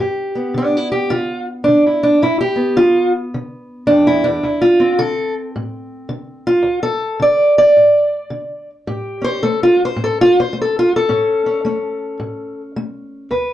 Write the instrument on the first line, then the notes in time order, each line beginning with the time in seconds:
steel-string acoustic guitar
0.00 G2 G4
0.35 B3
0.54 D3 D4
0.77 E4
0.92 G4
1.10 D3 F4
1.64 D4
1.68 D3
1.86 E4
2.03 D4
2.22 G2 E4
2.41 G4
2.56 B3
2.76 D3 F4
3.34 D3
3.87 F2 D4
4.07 E4
4.24 E2 D4
4.43 D2 E4
4.62 F4
4.80 C4
4.99 D3 A4
5.56 A2
6.09 D3
6.47 F4
6.63 D2
6.83 A4
7.20 D3 D5
7.58 D5
7.77 A2
8.30 D3
8.87 A2 G4
9.22 C#4 C5
9.43 A3 A4
9.63 F4
9.85 C5
9.96 A2
10.04 A4
10.21 F4
10.40 C5
10.53 A3
10.62 A4
10.79 F4
10.96 A4
11.09 A2 C#4
11.46 C#4
11.65 A3 C#4
12.20 A2
12.76 A3
13.31 D2 B4